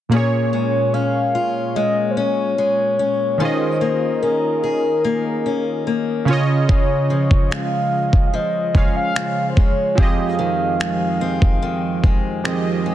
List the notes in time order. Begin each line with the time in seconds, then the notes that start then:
0.09 A#2 A#3 C#4 C#5
0.15 G#4 C#5
0.53 G#3
0.94 C#4 F5
1.35 F4
1.76 G#3 D#5
2.11 C5
2.16 C#4 C#5
2.58 G#3 C#5
2.99 C#4
3.38 D#3 C#4 F4 C5
3.43 G#4 D#5
3.81 A#3
4.22 C#4 A#4
4.63 G#4
5.04 A#3
5.46 C#4
5.87 A#3
6.25 C#3 C#4 F4
6.31 C#5 D#5
6.69 C#3 C#5, kick
7.10 F3
7.31 kick
7.51 G#3 F5, finger snap
8.13 kick
8.27 F5
8.34 F3 D#5
8.74 C#3 G#3 C#4 F4 C#5 F5, kick
8.96 F5
9.15 F3, finger snap
9.50 C5
9.57 G#3 C#5, kick
9.95 F2 F3 C4 G4 F5, kick
10.01 G#4 D#5
10.39 D#3
10.80 G#3, finger snap
11.21 C4
11.42 kick
11.62 D#3
12.04 G#3, kick
12.44 D#3 F3 C4 G4 G#4 D#5, finger snap
12.86 G#3